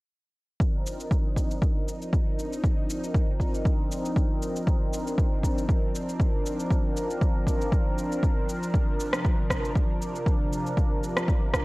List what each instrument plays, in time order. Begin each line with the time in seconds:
0.60 analog synth pad F3 C4 D4 D#4 A#4, kick, shaker
0.87 shaker
1.00 shaker
1.11 kick, shaker
1.36 kick, shaker
1.51 shaker
1.62 kick, shaker
1.88 shaker
2.02 shaker
2.13 kick, shaker
2.39 shaker
2.53 shaker
2.64 kick, shaker
2.90 shaker
3.04 shaker
3.14 kick, shaker
3.40 kick, shaker
3.55 shaker
3.65 kick, shaker
3.92 shaker
4.05 shaker
4.16 kick, shaker
4.42 shaker
4.56 shaker
4.67 kick, shaker
4.93 shaker
5.07 shaker
5.18 kick, shaker
5.43 kick, shaker
5.58 shaker
5.69 kick, shaker
5.95 shaker
6.09 shaker
6.20 kick, shaker
6.46 shaker
6.60 shaker
6.71 kick, shaker
6.97 shaker
7.11 shaker
7.21 kick, shaker
7.47 kick, shaker
7.62 shaker
7.72 kick, shaker
7.98 shaker
8.12 shaker
8.23 kick, shaker
8.49 shaker
8.63 shaker
8.74 analog synth pad C3, kick, shaker
9.00 shaker
9.13 cross-stick, shaker
9.25 kick, shaker
9.50 kick, cross-stick, shaker
9.65 shaker
9.75 kick, shaker
10.02 shaker
10.16 shaker
10.26 kick, shaker
10.53 shaker
10.67 shaker
10.77 kick, shaker
11.04 shaker
11.17 cross-stick, shaker
11.28 kick, shaker
11.54 kick, cross-stick, shaker